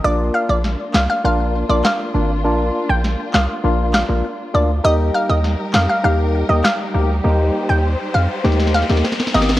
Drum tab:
CP |------------x-----------x-------|------------x-------x-----------|------------x-----------x-------|--------------------------------|
SD |--------o---o-----------o-------|--------o---o-------o-----------|--------o---o-----------o-------|----------------oooooooooooooooo|